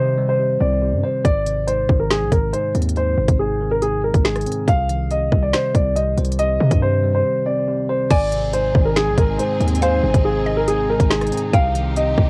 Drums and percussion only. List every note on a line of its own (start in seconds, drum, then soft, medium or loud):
1.25 kick loud
1.25 closed hi-hat medium
1.46 closed hi-hat medium
1.68 closed hi-hat medium
1.89 kick medium
2.11 finger snap medium
2.11 snare loud
2.11 closed hi-hat medium
2.32 kick loud
2.32 closed hi-hat medium
2.54 closed hi-hat medium
2.75 closed hi-hat soft
2.82 closed hi-hat medium
2.89 closed hi-hat medium
2.96 closed hi-hat medium
3.28 kick loud
3.28 closed hi-hat medium
3.82 closed hi-hat medium
4.14 kick medium
4.14 closed hi-hat medium
4.25 finger snap medium
4.25 snare loud
4.36 cross-stick medium
4.36 closed hi-hat soft
4.41 closed hi-hat medium
4.46 closed hi-hat medium
4.52 closed hi-hat medium
4.68 kick loud
4.68 closed hi-hat medium
4.89 closed hi-hat medium
5.11 closed hi-hat medium
5.32 kick medium
5.53 finger snap medium
5.53 snare loud
5.53 closed hi-hat medium
5.75 kick loud
5.75 closed hi-hat medium
5.96 closed hi-hat medium
6.18 closed hi-hat soft
6.25 closed hi-hat medium
6.32 closed hi-hat medium
6.39 closed hi-hat medium
6.71 kick medium
6.71 closed hi-hat medium
8.11 kick loud
8.11 closed hi-hat medium
8.11 crash loud
8.32 closed hi-hat medium
8.53 closed hi-hat medium
8.75 kick medium
8.96 finger snap medium
8.96 snare loud
8.96 closed hi-hat medium
9.18 kick loud
9.18 closed hi-hat medium
9.39 closed hi-hat medium
9.61 closed hi-hat soft
9.68 closed hi-hat medium
9.75 closed hi-hat medium
9.82 closed hi-hat medium
10.14 kick loud
10.14 closed hi-hat medium
10.68 closed hi-hat medium
11.00 kick medium
11.00 closed hi-hat medium
11.11 finger snap loud
11.11 snare loud
11.21 cross-stick medium
11.21 closed hi-hat soft
11.27 closed hi-hat medium
11.32 closed hi-hat medium
11.37 closed hi-hat medium
11.53 kick loud
11.53 closed hi-hat medium
11.75 closed hi-hat medium
11.96 closed hi-hat medium
12.18 kick medium